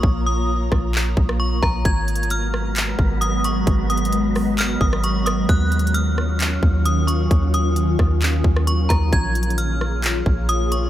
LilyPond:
<<
  \new Staff \with { instrumentName = "Synth bell" } { \time 4/4 \key gis \dorian \tempo 4 = 132 r8 dis'''8 r2 cis'''8 ais''8 | gis'''4 eis'''2 dis'''8 cis'''8 | r8 dis'''8 r4 eis'''8 dis'''8 cis'''8 dis'''8 | fis'''4 eis'''2 dis'''8 cis'''8 |
r8 dis'''8 r2 cis'''8 ais''8 | gis'''4 eis'''2 dis'''8 cis'''8 | }
  \new Staff \with { instrumentName = "Synth texture" } { \time 4/4 \key gis \dorian r1 | <fis' ais' b'>1~ | <fis' ais' b'>1 | <fis eis' cis''>1~ |
<fis eis' cis''>1 | r1 | }
  \new Staff \with { instrumentName = "Ambient pad" } { \time 4/4 \key gis \dorian << { <ais eis' cis''>1 | <fis gis b>1~ | <fis gis b>1 | <dis cis'>1~ |
<dis cis'>1 | <ais eis' cis''>1 | } \\ { ais''1~ | ais''1~ | ais''1 | eis'1~ |
eis'1 | gis'1 | } >> }
  \new Staff \with { instrumentName = "808-style bass" } { \clef bass \time 4/4 \key gis \dorian ais,,4. ais,,4 ais,,4 ais,,8 | gis,,2~ gis,,8 gis,,4. | gis,,2~ gis,,8 gis,,4. | dis,2~ dis,8 dis,4. |
dis,4. dis,4 dis,4 dis,8 | ais,,2~ ais,,8 ais,,4. | }
  \new DrumStaff \with { instrumentName = "Drums" } \drummode { \time 4/4 bd4 r8 <bd ss>8 hc8 bd16 ss16 r8 <bd ss>8 | \tuplet 3/2 { <hh bd>16 r16 r16 hh16 hh16 hh16 } hh8 ss8 <hc hh>8 bd8 hh8 hh8 | \tuplet 3/2 { <hh bd>16 r16 r16 hh16 hh16 hh16 } hh8 <hho ss>8 <hc hh>8 bd16 ss16 hh8 <hh ss>8 | \tuplet 3/2 { <hh bd>16 r16 r16 hh16 hh16 hh16 } hh8 ss8 <hc hh>8 bd8 hh8 hh8 |
<hh bd>8 hh8 hh8 <bd ss>8 <hc hh>8 bd16 ss16 hh8 <hh bd ss>8 | \tuplet 3/2 { <hh bd>16 r16 r16 hh16 hh16 hh16 } hh8 ss8 <hc hh>8 bd8 hh8 hh8 | }
>>